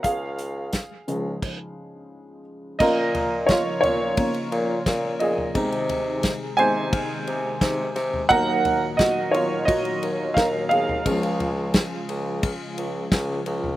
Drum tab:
CC |--------x-------|x---------------|----------------|----------------|
RD |----------------|--x-x-x-xxx-x-x-|xxx-x-x-x-x-x-x-|x-x-x-x-xxx-x-x-|
HH |x-x-x-x---------|----------------|----------------|----------------|
SD |----o-----------|----o-------o---|----o-------o-o-|----o-------o---|
FT |----------------|--o---o--------o|--o------------o|--o------------o|
BD |o---o---o-------|o---o---o---o---|o---o---o---o---|o---o---o---o---|

CC |----------------|
RD |xxx-x-x-x-x-x-x-|
HH |----------------|
SD |----o-------o---|
FT |--o------------o|
BD |o---o---o---o---|